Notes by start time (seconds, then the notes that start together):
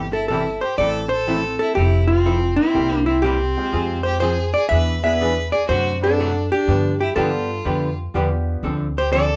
Already playing: G1 C5
0.13 E4 A4
0.28 C3 E3 G3 C4 E4 A4
0.61 G4 C5
0.78 A1 E3 A3 C4 E4 A4 D5
1.09 A4 C5
1.27 E3 A3 C4 E4 A4
1.59 E4 A4
1.75 F1 F3 C4 E4 G4 A4
2.07 C4 F4
2.25 F3 C4 E4 A4
2.56 C4 E4
2.74 C2 C3 G3 A#3 C4 E4 G4
3.06 C4 E4
3.22 C3 G3 A#3 C4 E4 G4
3.57 G#3 C4 F4 G4
3.72 F2 F3 C4 F4 G#4
4.03 G4 C5
4.20 F3 C4 F4 G#4 C5
4.54 G#4 D5
4.69 E2 E3 B3 D4 G#4 B4 E5
5.03 B3 D4 E4 G#4 B4 E5
5.21 E3 B3 D4 G#4
5.52 G#4 D5
5.68 F#2 C3 F#3 A3 D4 F#4 C5
6.02 C4 D4 F#4 A4 B4
6.19 C3 F#3 A3 D4 F#4
6.52 D4 G4
6.67 G2 D3 F3 B3 D4 G4
7.00 E4 G4
7.16 G2 D3 F3 B3 D4 F4 G4 A4
7.65 F2 D3 F3 B3 D4 G4
8.14 E2 D3 F3 B3 D4 F4 G4
8.63 D2 D3 F3 C4 D4 A4
8.98 G4 C5
9.13 D3 F3 C4 D4 A4 D5